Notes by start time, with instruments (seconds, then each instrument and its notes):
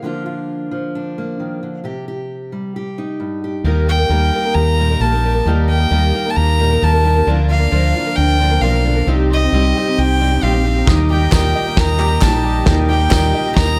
0.02 steel-string acoustic guitar D3 F3 A#3 D4 F4
0.26 steel-string acoustic guitar F4
0.71 steel-string acoustic guitar F3
0.95 steel-string acoustic guitar D4
1.18 steel-string acoustic guitar A#3
1.40 steel-string acoustic guitar D#3
1.63 steel-string acoustic guitar D3
1.84 steel-string acoustic guitar C3 G4
2.08 steel-string acoustic guitar G4
2.52 steel-string acoustic guitar G3
2.76 steel-string acoustic guitar G4
2.98 steel-string acoustic guitar D#4
3.20 steel-string acoustic guitar G2
3.44 steel-string acoustic guitar G4
3.64 fingered electric bass D#2, twelve-string acoustic guitar D#3 G3 A#3 D#4 A#4, steel-string acoustic guitar D#3 A#3 G4 A#4
3.87 twelve-string acoustic guitar G3 A#3 D#4 A#4, fiddle G5
3.98 twelve-string acoustic guitar A#3 D#4 A#4
4.09 fingered electric bass D#2, twelve-string acoustic guitar D#3 G3 A#3 D#4 A#4, steel-string acoustic guitar G3 A#3
4.33 twelve-string acoustic guitar G3 A#3 D#4 A#4, steel-string acoustic guitar A#4
4.45 twelve-string acoustic guitar A#3 D#4 A#4
4.54 fingered electric bass D#2, steel-string acoustic guitar G4, fiddle A#5
4.78 steel-string acoustic guitar A#2, twelve-string acoustic guitar G3 A#3 D#4 A#4
4.90 twelve-string acoustic guitar A#3 D#4 A#4
5.00 fingered electric bass A#1, twelve-string acoustic guitar D#3 G3 A#3 D#4 A#4, steel-string acoustic guitar A#4, fiddle A5
5.13 twelve-string acoustic guitar A#3 D#4 A#4
5.24 twelve-string acoustic guitar G3 A#3 D#4 A#4, steel-string acoustic guitar G4
5.35 twelve-string acoustic guitar A#3 D#4 A#4
5.46 fingered electric bass D#2, twelve-string acoustic guitar D#3 G3 A#3 D#4 A#4, steel-string acoustic guitar D#3 A#3 G4 A#4
5.68 twelve-string acoustic guitar G3 A#3 D#4 A#4, fiddle G5
5.79 twelve-string acoustic guitar A#3 D#4 A#4
5.91 fingered electric bass D#2, twelve-string acoustic guitar D#3 G3 A#3 D#4 A#4, steel-string acoustic guitar G3 A#3
6.14 twelve-string acoustic guitar G3 A#3 D#4 A#4, steel-string acoustic guitar A#4
6.25 twelve-string acoustic guitar A#3 D#4 A#4
6.30 fiddle A5
6.36 fingered electric bass D#2, steel-string acoustic guitar G4, fiddle A#5
6.58 steel-string acoustic guitar A#2, twelve-string acoustic guitar G3 A#3 D#4 A#4
6.71 twelve-string acoustic guitar A#3 D#4 A#4
6.82 fingered electric bass D#2, twelve-string acoustic guitar D#3 G3 A#3 D#4 A#4, steel-string acoustic guitar A#4, fiddle A5
6.93 twelve-string acoustic guitar A#3 D#4 A#4
7.04 twelve-string acoustic guitar G3 A#3 D#4 A#4, steel-string acoustic guitar G4
7.16 twelve-string acoustic guitar A#3 D#4 A#4
7.27 fingered electric bass D2, twelve-string acoustic guitar D3 F3 A#3 D4 A#4, steel-string acoustic guitar D3 A#3 D4
7.32 steel-string acoustic guitar F4
7.48 twelve-string acoustic guitar F3 A#3 D4 A#4, fiddle F5
7.59 twelve-string acoustic guitar A#3 D4 A#4
7.71 fingered electric bass D2, twelve-string acoustic guitar D3 F3 A#3 D4 A#4, steel-string acoustic guitar F3 A#3
7.95 twelve-string acoustic guitar F3 A#3 D4 A#4, steel-string acoustic guitar F4
8.06 twelve-string acoustic guitar A#3 D4 A#4
8.16 fingered electric bass D2, steel-string acoustic guitar D4, fiddle G5
8.39 steel-string acoustic guitar D3, twelve-string acoustic guitar F3 A#3 D4 A#4
8.51 twelve-string acoustic guitar A#3 D4 A#4
8.61 fingered electric bass B1, twelve-string acoustic guitar D3 F3 A#3 D4 A#4, steel-string acoustic guitar D#3, fiddle F5
8.73 twelve-string acoustic guitar A#3 D4 A#4
8.84 steel-string acoustic guitar D3, twelve-string acoustic guitar F3 A#3 D4 A#4
8.95 twelve-string acoustic guitar A#3 D4 A#4
9.07 fingered electric bass C2, twelve-string acoustic guitar C3 G3 C4 D#4 G4, steel-string acoustic guitar C3 D#4 G4
9.30 twelve-string acoustic guitar G3 C4 D#4 G4, fiddle D#5
9.42 twelve-string acoustic guitar C4 D#4 G4
9.52 fingered electric bass C2, twelve-string acoustic guitar C3 G3 C4 D#4 G4, steel-string acoustic guitar G3 D#4
9.76 twelve-string acoustic guitar G3 C4 D#4 G4, steel-string acoustic guitar G4
9.87 twelve-string acoustic guitar C4 D#4 G4
9.98 fingered electric bass C2, steel-string acoustic guitar G4, fiddle G5
10.20 steel-string acoustic guitar G2, twelve-string acoustic guitar G3 C4 D#4 G4
10.32 twelve-string acoustic guitar C4 D#4 G4
10.42 fingered electric bass A#1, twelve-string acoustic guitar C3 G3 C4 D#4 G4, steel-string acoustic guitar G4, fiddle F5
10.53 twelve-string acoustic guitar C4 D#4 G4
10.65 twelve-string acoustic guitar G3 C4 D#4 G4, steel-string acoustic guitar G4
10.76 twelve-string acoustic guitar C4 D#4 G4
10.85 fingered electric bass D#2, felt piano D#2 G3 A#4, twelve-string acoustic guitar D#3 G3 A#3 D#4 G4, upright piano D#4, harmonium G4 A#4 D#5 G5, kick, snare
10.89 felt piano D#3 A#3 D#4
11.10 twelve-string acoustic guitar G3 A#3 D#4 G4, felt piano G3 A#3 D#4 A#4, upright piano G4, fiddle G5
11.22 twelve-string acoustic guitar A#3 D#4 G4
11.31 fingered electric bass D#2, twelve-string acoustic guitar D#3 G3 A#3 D#4 G4, felt piano G3 A#3 D#4 F4, upright piano A#4, kick, snare, clap, tambourine
11.54 twelve-string acoustic guitar G3 A#3 D#4 G4, upright piano D#5
11.66 twelve-string acoustic guitar A#3 D#4 G4
11.76 fingered electric bass D#2, felt piano G3 A#3 D#4 A#4, upright piano A#4, fiddle A#5, kick, snare
11.98 twelve-string acoustic guitar G3 A#3 D#4 G4, upright piano G4, clap
12.10 twelve-string acoustic guitar A#3 D#4 G4
12.21 fingered electric bass A#1, twelve-string acoustic guitar D#3 G3 A#3 D#4 G4, felt piano G3 A#3 D#4, upright piano D#4, fiddle A5, kick, snare, clap, tambourine
12.32 twelve-string acoustic guitar A#3 D#4 G4
12.43 twelve-string acoustic guitar G3 A#3 D#4 G4, upright piano G4
12.66 fingered electric bass D#2, felt piano D#2 D#3 G3 A#3 D#4 A#4, twelve-string acoustic guitar D#3 G3 A#3 D#4 G4, upright piano D#4, kick, snare
12.89 twelve-string acoustic guitar G3 A#3 D#4 G4, felt piano G3 D#4, upright piano G4, fiddle G5
12.99 twelve-string acoustic guitar A#3 D#4 G4
13.11 fingered electric bass D#2, twelve-string acoustic guitar D#3 G3 A#3 D#4 G4, felt piano G3 A#3 F4, upright piano A#4, kick, snare, clap, tambourine
13.34 twelve-string acoustic guitar G3 A#3 D#4 G4, upright piano D#5
13.46 twelve-string acoustic guitar A#3 D#4 G4
13.56 fingered electric bass D#2, felt piano G3 A#3 D#4 A#4, upright piano A#4, fiddle A#5, kick, snare